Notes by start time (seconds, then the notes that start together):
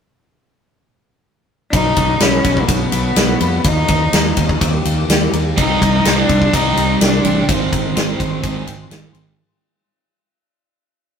1.73 B1 B2 D#4, kick, ride
1.96 B1 D#4, kick, ride
2.20 B1 B3 C#4, snare, ride
2.44 B1 B2, kick, ride
2.57 kick
2.62 A#3
2.67 B1 F#3 B3, kick, ride
2.92 B1 B3, ride
3.16 B1 F#3, snare, ride
3.40 F2 B3, ride
3.64 D#2 D#3 D#4, kick, ride
3.88 D#2 D#4, kick, ride
4.12 D#2 A#3, snare, ride
4.37 D#2 D#3, kick, ride
4.49 kick
4.61 D#2 G3, kick, ride
4.85 D#2 A#3, ride
5.09 D#2 G3, snare, ride
5.33 D#2 A#3, ride
5.56 C2 C3 G3 C4 D#4, kick, ride
5.81 C2 C3 G3 D#4, kick, ride
6.04 C2 C3 G3 C4 D4, snare, ride
6.29 C2 C3 G3, kick, ride
6.42 kick
6.53 C2 C3 G3 C4 D#4, kick, ride
6.76 C2 C3 G3 C4, ride
7.01 C2 C3 G3 D4, snare, ride
7.24 A1 C3 G3 C4, ride
7.48 G#1 G#2 D#3 G#3 C4, kick, ride
7.72 G#1 G#2 D#3 D#4, kick, ride
7.95 G#1 G#2 D#3 G#3 C4, snare, ride
8.19 G#1 G#2 D#3, kick, ride
8.42 G#1 G#2 D#3 G#3, kick, ride
8.66 G#1 G#2 D#3 C4, ride
8.89 G#1 G#2 D#3 G#3, snare, ride
9.13 G#1 G#2 D#3 C4, ride